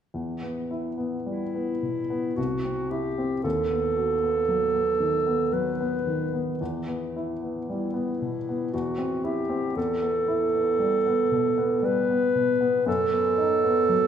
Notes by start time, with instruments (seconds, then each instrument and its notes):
0.14 grand piano E2
0.42 grand piano B3
0.71 grand piano E4
0.98 grand piano B3
1.26 grand piano G3, clarinet E4
1.55 grand piano B3
1.83 grand piano B2
2.10 grand piano B3
2.36 grand piano C2, clarinet F#4
2.65 grand piano C4
2.90 grand piano E4, clarinet G4
3.18 grand piano C4
3.43 grand piano D#2, clarinet A4
3.69 grand piano B3
3.97 grand piano F#4
4.23 grand piano B3
4.49 grand piano F#3
4.74 grand piano B3
5.00 grand piano D#3
5.27 grand piano B3
5.52 grand piano F#3, clarinet B4
5.80 grand piano B3
6.07 grand piano D#3
6.34 grand piano B3
6.61 grand piano E2
6.88 grand piano B3
7.16 grand piano E4
7.43 grand piano B3
7.67 grand piano G3, clarinet E4
7.94 grand piano B3
8.22 grand piano B2
8.49 grand piano B3
8.73 grand piano E2, clarinet F#4
8.98 grand piano C4
9.24 grand piano E4, clarinet G4
9.50 grand piano C4
9.76 grand piano E2, clarinet A4
10.02 grand piano B3
10.28 grand piano E4
10.54 grand piano B3
10.79 grand piano G3
11.06 grand piano B3
11.31 grand piano B2
11.58 grand piano B3
11.82 grand piano G3, clarinet B4
12.10 grand piano B3
12.35 grand piano B2
12.61 grand piano B3
12.86 grand piano F#2, clarinet A4
13.12 grand piano B3
13.38 grand piano D#4
13.64 grand piano B3
13.89 grand piano F#3